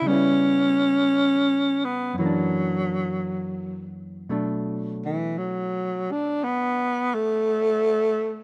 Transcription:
X:1
M:4/4
L:1/8
Q:"Swing" 1/4=57
K:Bphr
V:1 name="Tenor saxophone"
^C3 B, F,3 z | z E, F, D B, A,3 |]
V:2 name="Hollow-body jazz guitar" clef=bass
[^C,G,B,E]4 [F,,E,^A,D]4 | [B,,F,A,D]8 |]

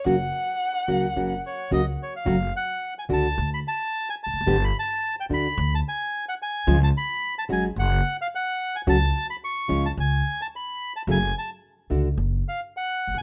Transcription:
X:1
M:4/4
L:1/16
Q:1/4=109
K:F#
V:1 name="Bandoneon"
z8 z2 c2 d2 c e- | [K:F#m] ^e2 f3 g a3 b a3 g a2- | a b a3 =g b3 a ^g3 f g2- | g a b3 a g2 f3 ^e f3 g |
a3 b c'3 a g3 a b3 a | g2 a2 z6 ^e2 f3 g |]
V:2 name="Violin"
f12- f2 z2 | [K:F#m] z16 | z16 | z16 |
z16 | z16 |]
V:3 name="Nylon-string guitar"
[C,F,A,CF]2 z4 [C,F,A,CF]2 [C,F,A,CF]2 z2 [C,F,A,CF]2 z2 | [K:F#m] [C,F,A,CF]2 z4 [D,A,DF]2 z8 | [D,=G,B,=G]2 z4 [D,A,DF]2 z8 | [C,^E,G,C^E]2 z4 [F,G,CF]2 z8 |
[C,F,A,CF]2 z4 [C,^E,G,C^E]2 z8 | [C,F,A,CG]2 z4 [D,A,DF]2 z8 |]
V:4 name="Upright bass" clef=bass
F,,,3/2 z4 z/2 C,,3/2 z/2 F,,,3/2 z2 z/2 C,,3/2 z2 z/2 | [K:F#m] F,,,3/2 z4 z/2 C,,3/2 z/2 D,,3/2 z4 z E,,,/2 ^E,,,/2 F,,,/2 | =G,,,3/2 z4 z/2 D,,3/2 z/2 D,,3/2 z6 z/2 | C,,3/2 z4 z/2 G,,,3/2 z/2 F,,,3/2 z6 z/2 |
C,,3/2 z4 z/2 C,,3/2 z/2 C,,3/2 z6 z/2 | F,,,3/2 z4 z/2 C,,3/2 z/2 F,,,3/2 z4 z G,,,/2 A,,,/2 z/2 |]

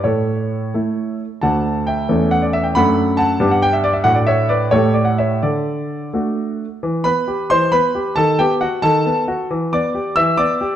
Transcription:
X:1
M:6/8
L:1/16
Q:3/8=90
K:D
V:1 name="Grand piano"
[Ac]8- [Ac]2 z2 | [fa]4 [eg]4 f d e g | [fb]4 [fa]3 f g e d e | f d [ce]2 [Bd]2 [Ac]2 d f [ce]2 |
[Ad]6 z6 | [K:Em] z2 [Bb]4 [cc']2 [Bb]4 | [Aa]2 [Gg]2 [Ff]2 [Aa]6 | z2 [dd']4 [ee']2 [dd']4 |]
V:2 name="Grand piano"
A,,6 [A,E]6 | [D,,A,DF]6 [E,,A,CA]6 | [F,,A,DA]6 [G,,B,DG]6 | [A,,A,DF]6 [A,,A,EG]6 |
D,6 [A,DF]6 | [K:Em] E,2 B,2 G2 E,2 B,2 G2 | ^D,2 B,2 z2 D,2 B,2 F2 | E,2 B,2 G2 E,2 B,2 G2 |]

